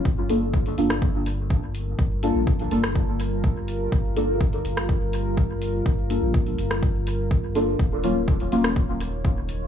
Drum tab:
HH |--o--oo---o---o-|--o--oo---o---o-|--o--oo---o---o-|--o--oo---o---o-|
SD |-------r--------|-------r--------|-------r--------|-------r--------|
BD |o---o---o---o---|o---o---o---o---|o---o---o---o---|o---o---o---o---|

HH |--o--oo---o---o-|
SD |-------r--------|
BD |o---o---o---o---|